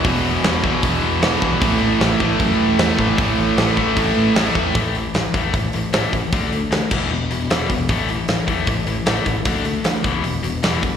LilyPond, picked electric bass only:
\new Staff \with { instrumentName = "Picked electric bass" } { \clef bass \time 4/4 \key e \mixolydian \tempo 4 = 153 e,,8 e,,8 e,,4 e,,8 e,8 e,,8 b,,8 | a,,8 a,,8 a,,8 a,,8 fis,8 e,,8 e,8 a,8 | a,,8 a,,8 a,,4 a,,8 a,8 a,,8 e,8 | a,,4 a,,8 e,8 a,,8 a,,8 a,,8 a,,8 |
d,8 d,8 d,8 e,,8 e,,8 e,,8 e,,8 e,,8 | a,,4 a,,8 e,8 a,,8 a,,8 a,,8 a,,8 | d,8 d,8 d,8 e,,8 e,,8 e,,8 e,,8 e,,8 | }